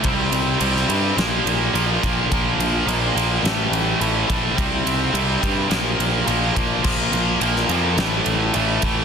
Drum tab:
CC |----------------|----------------|----------------|x---------------|
RD |x-x-x-x-x-x-x-x-|x-x-x-x-x-x-x-x-|x-x-x-x-x-x-x-x-|--x-x-x-x-x-x-x-|
SD |-----o--o-------|--------o-------|--------o-------|-----o--o-------|
BD |o-------------o-|o-------------o-|o-----o-------o-|o-------------o-|